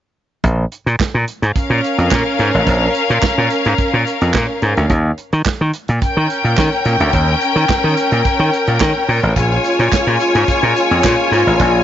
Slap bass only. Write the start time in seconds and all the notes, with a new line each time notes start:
0.44 A#1
0.86 A#2
1.00 muted slap bass stroke
1.14 A#2
1.42 G#2
1.56 muted slap bass stroke
1.70 A#2
1.98 F2
2.12 A#2
2.39 G#2
2.54 A1
2.67 A#1
3.10 A#2
3.22 muted slap bass stroke
3.38 A#2
3.66 G#2
3.78 muted slap bass stroke
3.94 A#2
4.21 F2
4.34 A#2
4.62 G#2
4.77 D2
4.90 D#2
5.33 D#3
5.46 muted slap bass stroke
5.61 D#3
5.89 A#2
6.17 D#3
6.44 A#2
6.58 D#3
6.85 A#2
7.00 D2
7.13 D#2
7.56 D#3
7.69 muted slap bass stroke
7.84 D#3
8.12 A#2
8.39 D#3
8.68 A#2
8.81 D#3
9.09 A#2
9.23 A1
9.36 A#1
9.79 A#2
9.92 muted slap bass stroke
10.07 A#2
10.35 G#2
10.48 muted slap bass stroke
10.63 A#2
10.91 F2
11.04 A#2
11.32 G#2
11.47 A1
11.60 A#1